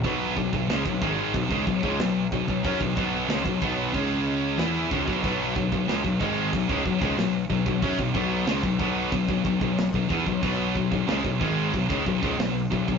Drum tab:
HH |o---o---o---o---|o---o---o---o---|o---o---o---o---|o---o---o---o---|
SD |----o-------o---|----o-------o---|----o-------o---|----o-------o---|
BD |o-oo-oo-oooo--oo|ooo--oo-o-----oo|o-oo-oo-oooo--oo|ooo--oo-oooo-ooo|

HH |o---o---o---o---|
SD |----o-------o---|
BD |o-oo-oo-oooo--oo|